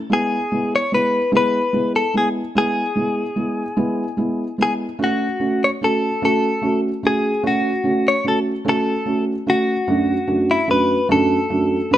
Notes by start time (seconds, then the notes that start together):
0.10 G#3 B3 E4 G#4
0.52 G#3 B3 E4
0.76 C#5
0.92 G#3 B3 E4 B4
1.32 G#3 B3 E4
1.37 B4
1.73 G#3 B3 E4
1.96 A4
2.14 G#3 B3 E4 G#4
2.55 G#3 B3 E4 G#4
2.95 G#3 B3 E4
3.36 G#3 B3 E4
3.77 G#3 B3 E4
4.17 G#3 B3 E4
4.58 G#3 B3 E4
4.63 G#4
4.99 A3 C#4 F#4
5.04 F#4
5.40 A3 C#4 F#4
5.64 C#5
5.81 A3 C#4 F#4 A4
6.22 A3 C#4 F#4 A4
6.62 A3 C#4 F#4
7.03 A3 C#4 F#4 G#4
7.43 A3 C#4 F#4
7.84 A3 C#4 F#4
8.08 C#5
8.24 A3 C#4 F#4 A4
8.65 A3 C#4 F#4
8.69 A4
9.06 A3 C#4 F#4
9.47 A3 C#4 F#4
9.87 F#2 A3 D4 F#4
10.27 F#2 A3 D4 F#4
10.51 E4
10.68 F#2 A3 D4 F#4 B4
11.09 F#2 A3 D4 F#4 A4
11.49 F#2 A3 D4 F#4
11.91 F#2 A3 D4 F#4 B4